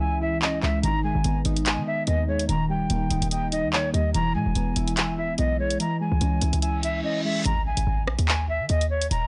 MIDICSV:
0, 0, Header, 1, 7, 480
1, 0, Start_track
1, 0, Key_signature, 5, "minor"
1, 0, Tempo, 413793
1, 969, Time_signature, 4, 2, 24, 8
1, 10753, End_track
2, 0, Start_track
2, 0, Title_t, "Flute"
2, 0, Program_c, 0, 73
2, 0, Note_on_c, 0, 80, 86
2, 224, Note_off_c, 0, 80, 0
2, 253, Note_on_c, 0, 76, 86
2, 471, Note_off_c, 0, 76, 0
2, 487, Note_on_c, 0, 75, 81
2, 708, Note_off_c, 0, 75, 0
2, 730, Note_on_c, 0, 76, 84
2, 949, Note_off_c, 0, 76, 0
2, 966, Note_on_c, 0, 82, 107
2, 1187, Note_off_c, 0, 82, 0
2, 1208, Note_on_c, 0, 80, 78
2, 1607, Note_off_c, 0, 80, 0
2, 1934, Note_on_c, 0, 80, 92
2, 2151, Note_off_c, 0, 80, 0
2, 2170, Note_on_c, 0, 76, 90
2, 2389, Note_off_c, 0, 76, 0
2, 2407, Note_on_c, 0, 75, 95
2, 2628, Note_off_c, 0, 75, 0
2, 2648, Note_on_c, 0, 73, 75
2, 2868, Note_off_c, 0, 73, 0
2, 2886, Note_on_c, 0, 82, 94
2, 3107, Note_off_c, 0, 82, 0
2, 3128, Note_on_c, 0, 79, 76
2, 3805, Note_off_c, 0, 79, 0
2, 3850, Note_on_c, 0, 79, 95
2, 4069, Note_off_c, 0, 79, 0
2, 4083, Note_on_c, 0, 75, 91
2, 4305, Note_off_c, 0, 75, 0
2, 4327, Note_on_c, 0, 73, 85
2, 4548, Note_off_c, 0, 73, 0
2, 4563, Note_on_c, 0, 75, 85
2, 4785, Note_off_c, 0, 75, 0
2, 4804, Note_on_c, 0, 82, 118
2, 5026, Note_off_c, 0, 82, 0
2, 5050, Note_on_c, 0, 80, 83
2, 5726, Note_off_c, 0, 80, 0
2, 5768, Note_on_c, 0, 80, 85
2, 5988, Note_off_c, 0, 80, 0
2, 6005, Note_on_c, 0, 76, 88
2, 6226, Note_off_c, 0, 76, 0
2, 6244, Note_on_c, 0, 75, 99
2, 6466, Note_off_c, 0, 75, 0
2, 6490, Note_on_c, 0, 73, 85
2, 6709, Note_off_c, 0, 73, 0
2, 6734, Note_on_c, 0, 82, 85
2, 6951, Note_off_c, 0, 82, 0
2, 6968, Note_on_c, 0, 80, 78
2, 7645, Note_off_c, 0, 80, 0
2, 7679, Note_on_c, 0, 80, 88
2, 7903, Note_off_c, 0, 80, 0
2, 7933, Note_on_c, 0, 76, 87
2, 8151, Note_off_c, 0, 76, 0
2, 8167, Note_on_c, 0, 75, 83
2, 8387, Note_off_c, 0, 75, 0
2, 8409, Note_on_c, 0, 76, 86
2, 8629, Note_off_c, 0, 76, 0
2, 8644, Note_on_c, 0, 82, 109
2, 8866, Note_off_c, 0, 82, 0
2, 8887, Note_on_c, 0, 80, 81
2, 9309, Note_off_c, 0, 80, 0
2, 9613, Note_on_c, 0, 80, 94
2, 9831, Note_off_c, 0, 80, 0
2, 9850, Note_on_c, 0, 76, 91
2, 10069, Note_off_c, 0, 76, 0
2, 10087, Note_on_c, 0, 75, 101
2, 10307, Note_off_c, 0, 75, 0
2, 10327, Note_on_c, 0, 73, 76
2, 10548, Note_off_c, 0, 73, 0
2, 10566, Note_on_c, 0, 82, 96
2, 10753, Note_off_c, 0, 82, 0
2, 10753, End_track
3, 0, Start_track
3, 0, Title_t, "Synth keys"
3, 0, Program_c, 1, 88
3, 0, Control_c, 1, 64, 127
3, 0, Note_on_c, 1, 52, 92
3, 0, Note_on_c, 1, 56, 72
3, 0, Note_on_c, 1, 61, 84
3, 0, Note_on_c, 1, 64, 80
3, 8, Note_on_c, 1, 76, 89
3, 233, Note_off_c, 1, 64, 0
3, 247, Note_on_c, 1, 64, 90
3, 248, Note_off_c, 1, 52, 0
3, 474, Note_off_c, 1, 61, 0
3, 488, Note_on_c, 1, 61, 95
3, 490, Note_off_c, 1, 56, 0
3, 727, Note_on_c, 1, 56, 81
3, 967, Note_off_c, 1, 56, 0
3, 967, Note_on_c, 1, 51, 97
3, 968, Note_off_c, 1, 61, 0
3, 968, Note_off_c, 1, 64, 0
3, 968, Note_off_c, 1, 76, 0
3, 985, Control_c, 1, 64, 0
3, 1194, Control_c, 1, 64, 127
3, 1207, Note_on_c, 1, 56, 81
3, 1443, Note_on_c, 1, 59, 88
3, 1689, Note_on_c, 1, 63, 89
3, 1925, Note_on_c, 1, 75, 89
3, 2153, Note_off_c, 1, 63, 0
3, 2167, Note_off_c, 1, 51, 0
3, 2167, Note_on_c, 1, 63, 84
3, 2394, Note_off_c, 1, 59, 0
3, 2408, Note_off_c, 1, 56, 0
3, 2408, Note_on_c, 1, 59, 82
3, 2649, Note_on_c, 1, 56, 78
3, 2887, Note_off_c, 1, 75, 0
3, 2888, Note_off_c, 1, 56, 0
3, 2888, Note_off_c, 1, 59, 0
3, 2888, Note_off_c, 1, 63, 0
3, 2890, Note_on_c, 1, 51, 97
3, 2903, Control_c, 1, 64, 0
3, 3107, Control_c, 1, 64, 127
3, 3128, Note_on_c, 1, 55, 77
3, 3370, Note_on_c, 1, 58, 89
3, 3603, Note_on_c, 1, 63, 84
3, 3849, Note_on_c, 1, 75, 93
3, 4075, Note_off_c, 1, 63, 0
3, 4089, Note_off_c, 1, 51, 0
3, 4089, Note_on_c, 1, 63, 90
3, 4310, Note_off_c, 1, 58, 0
3, 4324, Note_on_c, 1, 58, 86
3, 4328, Note_off_c, 1, 55, 0
3, 4568, Note_on_c, 1, 55, 84
3, 4806, Note_off_c, 1, 58, 0
3, 4807, Note_on_c, 1, 52, 90
3, 4808, Note_off_c, 1, 55, 0
3, 4808, Note_off_c, 1, 63, 0
3, 4809, Note_off_c, 1, 75, 0
3, 4824, Control_c, 1, 64, 0
3, 5046, Note_on_c, 1, 56, 76
3, 5061, Control_c, 1, 64, 127
3, 5290, Note_on_c, 1, 59, 86
3, 5530, Note_on_c, 1, 64, 89
3, 5768, Note_on_c, 1, 76, 97
3, 5998, Note_off_c, 1, 64, 0
3, 6007, Note_off_c, 1, 52, 0
3, 6012, Note_on_c, 1, 64, 88
3, 6235, Note_off_c, 1, 59, 0
3, 6247, Note_off_c, 1, 56, 0
3, 6249, Note_on_c, 1, 59, 88
3, 6488, Note_on_c, 1, 56, 74
3, 6728, Note_off_c, 1, 56, 0
3, 6728, Note_off_c, 1, 59, 0
3, 6728, Note_off_c, 1, 76, 0
3, 6729, Note_on_c, 1, 52, 94
3, 6730, Note_off_c, 1, 64, 0
3, 6741, Control_c, 1, 64, 0
3, 6965, Control_c, 1, 64, 127
3, 6971, Note_on_c, 1, 56, 77
3, 7209, Note_on_c, 1, 61, 85
3, 7451, Note_on_c, 1, 64, 83
3, 7687, Note_on_c, 1, 76, 96
3, 7913, Note_off_c, 1, 64, 0
3, 7927, Note_on_c, 1, 64, 90
3, 7928, Note_off_c, 1, 52, 0
3, 8153, Note_off_c, 1, 61, 0
3, 8167, Note_on_c, 1, 61, 94
3, 8170, Note_off_c, 1, 56, 0
3, 8407, Note_on_c, 1, 56, 83
3, 8647, Note_off_c, 1, 56, 0
3, 8647, Note_off_c, 1, 76, 0
3, 8648, Note_off_c, 1, 61, 0
3, 8648, Note_off_c, 1, 64, 0
3, 8661, Control_c, 1, 64, 0
3, 8844, Control_c, 1, 64, 127
3, 10583, Control_c, 1, 64, 0
3, 10753, End_track
4, 0, Start_track
4, 0, Title_t, "808-style bass"
4, 0, Program_c, 2, 38
4, 0, Note_on_c, 2, 37, 106
4, 694, Note_off_c, 2, 37, 0
4, 728, Note_on_c, 2, 37, 104
4, 958, Note_off_c, 2, 37, 0
4, 968, Note_on_c, 2, 32, 117
4, 1320, Note_off_c, 2, 32, 0
4, 1335, Note_on_c, 2, 32, 101
4, 1441, Note_off_c, 2, 32, 0
4, 1448, Note_on_c, 2, 32, 110
4, 1678, Note_off_c, 2, 32, 0
4, 1688, Note_on_c, 2, 32, 109
4, 2054, Note_on_c, 2, 51, 97
4, 2072, Note_off_c, 2, 32, 0
4, 2390, Note_off_c, 2, 51, 0
4, 2408, Note_on_c, 2, 39, 109
4, 2869, Note_off_c, 2, 39, 0
4, 2888, Note_on_c, 2, 27, 117
4, 3349, Note_off_c, 2, 27, 0
4, 3368, Note_on_c, 2, 27, 111
4, 3598, Note_off_c, 2, 27, 0
4, 3607, Note_on_c, 2, 25, 104
4, 3730, Note_off_c, 2, 25, 0
4, 3735, Note_on_c, 2, 27, 110
4, 4215, Note_on_c, 2, 39, 97
4, 4233, Note_off_c, 2, 27, 0
4, 4550, Note_off_c, 2, 39, 0
4, 4568, Note_on_c, 2, 39, 106
4, 4798, Note_off_c, 2, 39, 0
4, 4808, Note_on_c, 2, 28, 109
4, 5048, Note_on_c, 2, 47, 95
4, 5065, Note_off_c, 2, 28, 0
4, 5169, Note_off_c, 2, 47, 0
4, 5175, Note_on_c, 2, 28, 104
4, 5281, Note_off_c, 2, 28, 0
4, 5288, Note_on_c, 2, 28, 110
4, 5518, Note_off_c, 2, 28, 0
4, 5527, Note_on_c, 2, 28, 106
4, 6219, Note_off_c, 2, 28, 0
4, 6247, Note_on_c, 2, 35, 111
4, 6709, Note_off_c, 2, 35, 0
4, 7095, Note_on_c, 2, 37, 107
4, 7201, Note_off_c, 2, 37, 0
4, 7208, Note_on_c, 2, 37, 110
4, 7438, Note_off_c, 2, 37, 0
4, 7447, Note_on_c, 2, 37, 110
4, 7570, Note_off_c, 2, 37, 0
4, 7575, Note_on_c, 2, 37, 106
4, 8144, Note_off_c, 2, 37, 0
4, 8648, Note_on_c, 2, 32, 118
4, 9001, Note_off_c, 2, 32, 0
4, 9015, Note_on_c, 2, 32, 101
4, 9121, Note_off_c, 2, 32, 0
4, 9128, Note_on_c, 2, 32, 110
4, 9368, Note_on_c, 2, 34, 103
4, 9385, Note_off_c, 2, 32, 0
4, 9489, Note_off_c, 2, 34, 0
4, 9495, Note_on_c, 2, 39, 112
4, 9975, Note_on_c, 2, 51, 99
4, 9993, Note_off_c, 2, 39, 0
4, 10082, Note_off_c, 2, 51, 0
4, 10088, Note_on_c, 2, 39, 110
4, 10549, Note_off_c, 2, 39, 0
4, 10568, Note_on_c, 2, 27, 118
4, 10753, Note_off_c, 2, 27, 0
4, 10753, End_track
5, 0, Start_track
5, 0, Title_t, "Impact"
5, 0, Program_c, 3, 103
5, 8648, Note_on_c, 3, 60, 93
5, 10568, Note_off_c, 3, 60, 0
5, 10753, End_track
6, 0, Start_track
6, 0, Title_t, "Reverse cymbal"
6, 0, Program_c, 4, 119
6, 7688, Note_on_c, 4, 60, 86
6, 8648, Note_off_c, 4, 60, 0
6, 10753, End_track
7, 0, Start_track
7, 0, Title_t, "Drums"
7, 487, Note_on_c, 9, 39, 110
7, 603, Note_off_c, 9, 39, 0
7, 727, Note_on_c, 9, 39, 72
7, 843, Note_off_c, 9, 39, 0
7, 968, Note_on_c, 9, 42, 76
7, 1084, Note_off_c, 9, 42, 0
7, 1443, Note_on_c, 9, 42, 79
7, 1559, Note_off_c, 9, 42, 0
7, 1682, Note_on_c, 9, 42, 83
7, 1798, Note_off_c, 9, 42, 0
7, 1815, Note_on_c, 9, 42, 78
7, 1924, Note_off_c, 9, 42, 0
7, 1924, Note_on_c, 9, 42, 76
7, 1928, Note_on_c, 9, 39, 113
7, 2040, Note_off_c, 9, 42, 0
7, 2044, Note_off_c, 9, 39, 0
7, 2401, Note_on_c, 9, 42, 72
7, 2517, Note_off_c, 9, 42, 0
7, 2777, Note_on_c, 9, 42, 79
7, 2888, Note_off_c, 9, 42, 0
7, 2888, Note_on_c, 9, 42, 78
7, 3004, Note_off_c, 9, 42, 0
7, 3363, Note_on_c, 9, 42, 79
7, 3479, Note_off_c, 9, 42, 0
7, 3602, Note_on_c, 9, 42, 84
7, 3718, Note_off_c, 9, 42, 0
7, 3735, Note_on_c, 9, 42, 80
7, 3843, Note_off_c, 9, 42, 0
7, 3843, Note_on_c, 9, 42, 85
7, 3959, Note_off_c, 9, 42, 0
7, 4085, Note_on_c, 9, 42, 74
7, 4201, Note_off_c, 9, 42, 0
7, 4328, Note_on_c, 9, 39, 109
7, 4444, Note_off_c, 9, 39, 0
7, 4573, Note_on_c, 9, 42, 69
7, 4689, Note_off_c, 9, 42, 0
7, 4808, Note_on_c, 9, 42, 77
7, 4924, Note_off_c, 9, 42, 0
7, 5283, Note_on_c, 9, 42, 79
7, 5399, Note_off_c, 9, 42, 0
7, 5522, Note_on_c, 9, 42, 84
7, 5638, Note_off_c, 9, 42, 0
7, 5655, Note_on_c, 9, 42, 78
7, 5764, Note_off_c, 9, 42, 0
7, 5764, Note_on_c, 9, 42, 77
7, 5768, Note_on_c, 9, 39, 118
7, 5880, Note_off_c, 9, 42, 0
7, 5884, Note_off_c, 9, 39, 0
7, 6241, Note_on_c, 9, 42, 71
7, 6357, Note_off_c, 9, 42, 0
7, 6617, Note_on_c, 9, 42, 81
7, 6728, Note_off_c, 9, 42, 0
7, 6728, Note_on_c, 9, 42, 81
7, 6844, Note_off_c, 9, 42, 0
7, 7203, Note_on_c, 9, 42, 77
7, 7319, Note_off_c, 9, 42, 0
7, 7441, Note_on_c, 9, 42, 88
7, 7557, Note_off_c, 9, 42, 0
7, 7575, Note_on_c, 9, 42, 81
7, 7683, Note_off_c, 9, 42, 0
7, 7683, Note_on_c, 9, 42, 85
7, 7799, Note_off_c, 9, 42, 0
7, 7925, Note_on_c, 9, 42, 74
7, 8041, Note_off_c, 9, 42, 0
7, 8648, Note_on_c, 9, 42, 79
7, 8764, Note_off_c, 9, 42, 0
7, 9014, Note_on_c, 9, 42, 78
7, 9130, Note_off_c, 9, 42, 0
7, 9367, Note_on_c, 9, 37, 99
7, 9483, Note_off_c, 9, 37, 0
7, 9496, Note_on_c, 9, 42, 79
7, 9608, Note_on_c, 9, 39, 115
7, 9612, Note_off_c, 9, 42, 0
7, 9724, Note_off_c, 9, 39, 0
7, 10081, Note_on_c, 9, 42, 72
7, 10197, Note_off_c, 9, 42, 0
7, 10222, Note_on_c, 9, 42, 79
7, 10338, Note_off_c, 9, 42, 0
7, 10458, Note_on_c, 9, 42, 82
7, 10568, Note_off_c, 9, 42, 0
7, 10568, Note_on_c, 9, 42, 78
7, 10684, Note_off_c, 9, 42, 0
7, 10753, End_track
0, 0, End_of_file